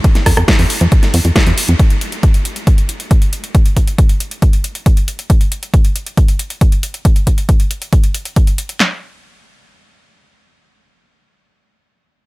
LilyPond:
<<
  \new Staff \with { instrumentName = "Analog synth bass" } { \clef bass \time 4/4 \key f \mixolydian \tempo 4 = 137 r8 f,16 f,16 r16 f,16 r16 f,16 r8 f,16 f,16 r16 f,16 r16 f,16 | r1 | r1 | r1 |
r1 | r1 | r1 | }
  \new DrumStaff \with { instrumentName = "Drums" } \drummode { \time 4/4 <hh bd>16 <hh sn>16 <hho bd ss>16 <hh ss>16 <hh bd sn>16 hho16 hho16 hh16 <hh bd>16 <hh sn>16 hho16 hh16 <hh bd sn>16 hh16 hho16 hh16 | <hh bd>16 hh16 hh16 hh16 <hh bd>16 hh16 hh16 hh16 <hh bd>16 hh16 hh16 hh16 <hh bd>16 hh16 hh16 hh16 | <hh bd>16 hh16 <hh bd>16 hh16 <hh bd>16 hh16 hh16 hh16 <hh bd>16 hh16 hh16 hh16 <hh bd>16 hh16 hh16 hh16 | <hh bd>16 hh16 hh16 hh16 <hh bd>16 hh16 hh16 hh16 <hh bd>16 hh16 hh16 hh16 <hh bd>16 hh16 hh16 hh16 |
<hh bd>16 hh16 <hh bd>16 hh16 <hh bd>16 hh16 hh16 hh16 <hh bd>16 hh16 hh16 hh16 <hh bd>16 hh16 hh16 hh16 | <hc sn>4 r4 r4 r4 | r4 r4 r4 r4 | }
>>